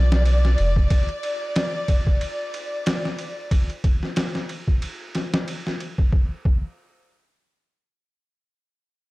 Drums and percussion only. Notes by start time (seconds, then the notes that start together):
0.12 snare
0.26 ride
0.45 snare
0.58 ride
0.76 kick
0.90 kick, ride
1.09 ride
1.23 ride
1.56 snare, ride
1.88 kick, ride
2.07 kick
2.21 ride
2.54 ride
2.86 snare, ride
3.05 snare
3.19 ride
3.51 kick, ride
3.70 ride
3.84 kick, ride
4.03 snare
4.16 snare, ride
4.35 snare
4.49 ride
4.68 kick
4.82 ride
5.15 snare, ride
5.34 snare
5.48 ride
5.67 snare
5.80 ride
5.98 kick
6.13 kick
6.45 kick